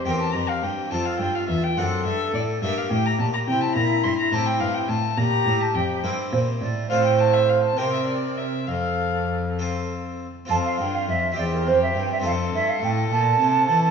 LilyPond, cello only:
\new Staff \with { instrumentName = "Cello" } { \clef bass \time 6/8 \key f \major \tempo 4. = 70 e,8 f,8 g,8 f,8 g,8 e,8 | fis,8 g,8 a,8 g,8 a,8 bes,8 | c8 bes,8 g,8 a,8 g,8 a,8 | bes,8 a,8 f,8 g,8 bes,8 a,8 |
a,4. c4. | f,2~ f,8 r8 | f,8 g,8 f,8 e,8 f,8 g,8 | f,8 g,8 a,8 bes,8 c8 e8 | }